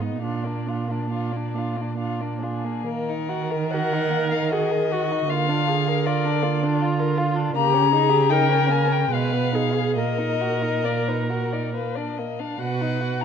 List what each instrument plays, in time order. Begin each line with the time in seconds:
Already playing: cello G#2
0.00 viola B3, violin D#4 D#5
0.21 cello A#2, viola D4, violin F5
0.26 violin F4
0.44 viola A#3, violin D4 D5
0.66 viola D4, violin F4 F5
0.88 viola A#3, violin D4 D5
1.10 viola D4, violin F4 F5
1.32 viola A#3, violin D5
1.37 violin D4
1.54 viola D4, violin F5
1.58 violin F4
1.76 viola A#3, violin D5
1.81 violin D4
1.98 viola D4, violin F4 F5
2.20 viola A#3, violin D4 D5
2.41 viola D4, violin F4 G#4
2.64 viola A#3, violin D4
2.85 cello D#3, violin A#3 A#4
3.09 violin D#4
3.29 violin F#4
3.51 violin A#4
3.71 violin F#4 F#5, viola A#4
3.93 violin D#4
4.10 violin A#3
4.31 violin D#4 F5
4.52 violin F#4 D#5, viola G#4
4.71 violin A#4
4.92 violin F#4, viola F#4
5.12 violin D#4
5.28 cello D3, violin A#3 F5, viola F4
5.48 violin D4
5.68 violin F4, viola G#4
5.88 violin A#4
6.05 violin F4 D5, viola A#4
6.26 violin D4
6.42 violin A#3, viola F4
6.63 violin D4
6.82 violin F4
7.00 violin A#4
7.18 violin F4
7.36 violin D4
7.55 cello C#3, violin A#3 A#5, viola G4
7.74 violin C#4
7.92 violin D#4, viola G#4
8.10 violin G4
8.30 violin D#4 G5, viola A#4
8.49 violin C#4
8.68 violin A#3 G#5
8.88 violin C#4
8.92 violin G5
9.08 cello B2, violin G#3, viola B4
9.13 violin F5
9.32 violin B3
9.53 violin D#4, viola G#4
9.74 violin G#4
9.95 cello A#2, violin A#3 D#5, viola A#4
10.18 violin D#4
10.41 violin F#4
10.62 violin D#4
10.84 violin A#3 D5
11.08 violin D#4 B4
11.29 violin F#4 A#4
11.53 violin D#4 D5
11.75 violin A#3 B4
11.95 violin D4 D5
12.17 violin A#3 D#5
12.40 violin D4 F5
12.59 cello B2, violin F#4 F#5, viola B4
12.82 violin D#4
13.01 violin F#4
13.21 violin A#5